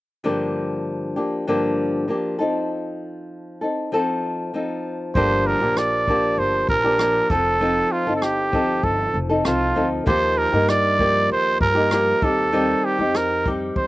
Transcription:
0.24 G2 D3 F3 A#3 D4 G4
1.16 F3 A#3 D4 G4
1.47 G2 D3 F3 A#3 D4 G4
2.08 F3 A#3 D4 G4
2.39 F3 C4 D#4 A4
3.61 C4 D#4 A4
3.92 F3 C4 D#4 A4
4.54 F3 C4 D#4 A4
5.15 G1 G2 D3 F3 A#3 D4 G4 C5, kick
5.47 A#4
5.61 A#1 F3 A#3 D4 G4
5.77 D5, cross-stick
6.08 F3 A#3 D4 G4, kick
6.38 G1 C5
6.69 A#1 A#4, kick
6.84 F3 A#3 D4 G4
6.99 F3 A#3 D4 G4, cross-stick
7.30 F1 F3 C4 D#4 A4, kick, cross-stick
7.60 F3 C4 D#4 A4
7.92 F4
8.07 G1 C4 D#4 A4
8.16 A4
8.22 G4, cross-stick
8.52 F3 C4 D#4 A4, kick
8.83 G1 A4, kick
9.14 F1
9.29 C4 D#4 A4
9.44 C2 F3 C4 D#4 F4 A4, cross-stick
9.75 D2 F3 C4 D#4 A4
10.06 D#2 D#3 F3 A#3 D#4 G4 C5, kick
10.38 A#4
10.52 G2 A#3 D#4 G4
10.69 D5, cross-stick
10.99 F3 A#3 D#4 G4, kick
11.29 D#2 C5
11.61 G2 A#4, kick
11.75 A#3 D#4 G4
11.91 F3 A#3 D#4 G4, cross-stick
12.22 D#2 G3 C4 D#4 G4 A4, kick
12.52 D#3 G3 C4 D#4 G4
12.85 G4
12.99 F2 C4 D#4 G4
13.15 A#4, cross-stick
13.45 G3 C4 D#4 G4, kick
13.76 F2 C5, kick

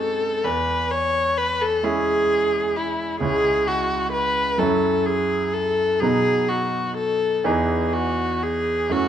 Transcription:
Already playing: G#3 C4 D#4
0.00 A4
0.44 E2 B4
0.91 C#5
1.37 B4
1.61 A4
1.83 G#3 C#4 E4 G#4
2.76 E4
3.20 C#2 G#3 C#4 E4 G#4
3.68 F#4
4.12 B4
4.58 F#2 F#3 C#4 E4 A4
5.06 G#4
5.54 A4
6.00 B2 F#3 B3 D#4 G#4
6.49 F#4
6.97 A4
7.44 E2 E3 B3 D#4 G#4
7.94 F#4
8.43 G#4
8.89 F#2 E3 A3 C#4 F#4

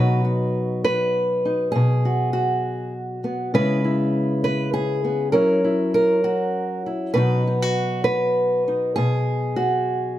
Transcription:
Already playing: B2 F#3 D#4 F#4 B4
0.25 F#4
0.84 B4
1.45 D#4
1.72 B2 G#4
2.05 F#4
2.33 F#4
3.24 B3
3.54 C#3 G#3 B3 E4 B4
3.84 E4
4.44 B4
4.74 G#4
5.04 B3
5.32 F#3 C#4 E4 A#4
5.64 E4
5.94 A#4
6.24 F#4
6.86 E4
7.14 B2 F#3 D#4 F#4 B4
7.47 D#4
7.62 F#4
8.04 B4
8.68 D#4
8.96 B2 G#4
9.56 F#4

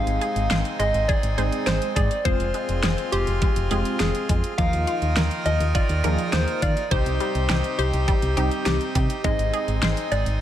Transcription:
Already playing: G#3 C4 D#4 G#4 F5
0.07 G#1, closed hi-hat
0.21 G#4, closed hi-hat
0.36 G#1, closed hi-hat
0.50 G#1 C5, snare, closed hi-hat
0.65 closed hi-hat
0.79 G#1 G#3 D#5, closed hi-hat
0.94 G#1, closed hi-hat
1.08 G#4 D5, kick, closed hi-hat
1.23 G#1, closed hi-hat
1.38 G#1 G#3 C4 D#4 G#4 C5, closed hi-hat
1.52 closed hi-hat
1.66 G#1 G#3 C5, snare, closed hi-hat
1.82 closed hi-hat
1.96 G#2 G#4 D5, kick, closed hi-hat
2.11 closed hi-hat
2.25 F1 G#3 C4 F4 G#4 C5, kick, closed hi-hat
2.40 F1, closed hi-hat
2.54 G#3, closed hi-hat
2.69 F1, closed hi-hat
2.83 F1 G#4, snare, closed hi-hat
2.98 closed hi-hat
3.12 F1 G4 C5, closed hi-hat
3.27 F1, closed hi-hat
3.42 G#3, kick, closed hi-hat
3.56 F1, closed hi-hat
3.71 F1 G#3 C4 F4 G#4, closed hi-hat
3.85 closed hi-hat
4.00 F1 G#4, snare, closed hi-hat
4.15 closed hi-hat
4.29 F2 G#3, kick, closed hi-hat
4.44 closed hi-hat
4.58 D#2 D#3 F3 A#3 D#4 F4 A#4 F5, kick, closed hi-hat
4.73 D#2, closed hi-hat
4.87 F4, closed hi-hat
5.02 D#2, closed hi-hat
5.16 D#2 A#4, snare, closed hi-hat
5.31 closed hi-hat
5.46 D#2 F3 D#5, closed hi-hat
5.60 D#2, closed hi-hat
5.75 F4 D5, kick, closed hi-hat
5.89 D#2, closed hi-hat
6.04 D#2 F3 A#3 D#4 G#4 A#4, closed hi-hat
6.19 closed hi-hat
6.33 D#2 F3 C5, snare, closed hi-hat
6.48 closed hi-hat
6.62 D#3 F4 D5, kick, closed hi-hat
6.77 closed hi-hat
6.91 C2 C3 G3 C4 D#4 G4 C5, kick, closed hi-hat
7.06 C2, closed hi-hat
7.20 G3, closed hi-hat
7.35 C2, closed hi-hat
7.49 C2 G4, snare, closed hi-hat
7.64 closed hi-hat
7.78 C2 G4 C5, closed hi-hat
7.93 C2, closed hi-hat
8.08 G3, kick, closed hi-hat
8.22 C2, closed hi-hat
8.37 C2 G3 C4 D#4 G4, closed hi-hat
8.51 closed hi-hat
8.66 C2 G4, snare, closed hi-hat
8.81 closed hi-hat
8.95 C3 G3, kick, closed hi-hat
9.10 closed hi-hat
9.24 G#1 G#3 C4 D#4 G#4 D#5, kick, closed hi-hat
9.39 G#1, closed hi-hat
9.53 G#4, closed hi-hat
9.68 G#1, closed hi-hat
9.82 G#1 C5, snare, closed hi-hat
9.97 closed hi-hat
10.12 G#1 G#3 D5, closed hi-hat
10.26 G#1, closed hi-hat

